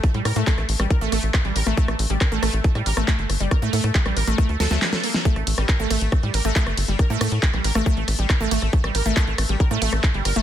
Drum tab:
RD |----------------|----------------|----------------|--x---x---x---x-|
HH |xxoxxxoxxxoxxxox|xxoxxxoxxxoxxxox|xxoxxxoxxxoxxxox|xxoxxxoxxxoxxxox|
CP |----x-------x---|----x-------x---|----x-------x---|----x-------x---|
SD |r-r--r-r--r-r--r|-r--r-r--r-r--r-|r--r-r--r-oooo-o|-r-r--r-r--r-r--|
BD |o---o---o---o---|o---o---o---o---|o---o---o-------|o---o---o---o---|

RD |--x---x---x---x-|--x---x---x---x-|
HH |xxoxxxoxxxoxxxox|xxoxxxoxxxoxxxox|
CP |----x-------x---|----x-------x---|
SD |r-r--r-r--r-r--r|-r--r-r--r-r--r-|
BD |o---o---o---o---|o---o---o---o---|